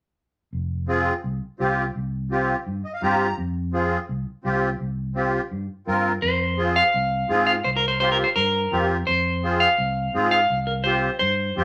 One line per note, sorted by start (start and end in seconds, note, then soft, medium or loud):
0.53 1.10 F1 medium
0.88 1.13 C4 medium
0.88 1.13 F4 medium
0.88 1.14 G#4 medium
1.24 1.38 C2 medium
1.59 1.88 C2 medium
1.59 1.84 C4 medium
1.59 1.85 F4 medium
1.59 1.85 G4 medium
1.96 2.53 C2 medium
2.31 2.56 C4 medium
2.31 2.56 F4 medium
2.31 2.56 G4 medium
2.66 2.81 G2 medium
2.85 2.93 D#5 medium
2.94 3.02 F5 medium
3.02 3.31 G2 medium
3.02 3.27 C4 medium
3.02 3.27 F4 medium
3.02 3.28 G4 loud
3.02 3.36 A#5 medium
3.38 3.95 F2 medium
3.73 3.98 C4 medium
3.73 3.99 F4 medium
3.73 3.99 G#4 medium
4.09 4.23 C2 medium
4.44 4.73 C2 loud
4.44 4.69 C4 medium
4.44 4.70 F4 medium
4.44 4.70 G4 medium
4.80 5.37 C2 medium
5.15 5.41 C4 medium
5.15 5.41 F4 medium
5.15 5.41 G4 medium
5.51 5.66 G2 medium
5.87 6.16 G2 medium
5.87 6.12 C4 medium
5.87 6.12 F4 medium
5.87 6.12 A#4 medium
6.22 6.80 F2 medium
6.22 6.72 C5 medium
6.58 6.83 C4 medium
6.58 6.83 F4 medium
6.58 6.83 G#4 medium
6.76 7.45 F5 loud
6.94 7.23 C2 loud
7.29 7.58 G#2 medium
7.29 7.54 C4 medium
7.29 7.54 F4 medium
7.29 7.55 G#4 loud
7.47 7.52 F5 medium
7.64 8.22 C2 medium
7.64 7.69 C5 medium
7.76 7.88 A#4 medium
7.88 7.99 C5 medium
8.00 8.26 C4 medium
8.00 8.26 F4 medium
8.00 8.26 G4 medium
8.00 8.11 C5 medium
8.12 8.17 A#4 medium
8.24 8.29 C5 medium
8.36 8.65 G2 medium
8.36 8.86 A#4 medium
8.72 9.01 F2 medium
8.72 8.97 C4 medium
8.72 8.97 F4 medium
8.72 8.97 G4 medium
9.07 9.65 F2 medium
9.07 9.57 C5 medium
9.43 9.68 C4 medium
9.43 9.68 F4 medium
9.43 9.69 G#4 medium
9.60 10.28 F5 loud
9.78 10.07 C2 medium
10.14 10.43 G#2 loud
10.14 10.39 C4 loud
10.14 10.40 F4 medium
10.14 10.40 G#4 loud
10.31 10.59 F5 medium
10.50 11.07 C2 medium
10.67 10.72 A#4 medium
10.84 11.10 C4 medium
10.84 11.10 F4 medium
10.84 11.11 G4 medium
10.84 11.18 C5 medium
11.19 11.49 G2 medium
11.19 11.64 C5 medium
11.56 11.64 F2 medium
11.56 11.64 C4 medium
11.56 11.64 F4 medium
11.56 11.64 G4 medium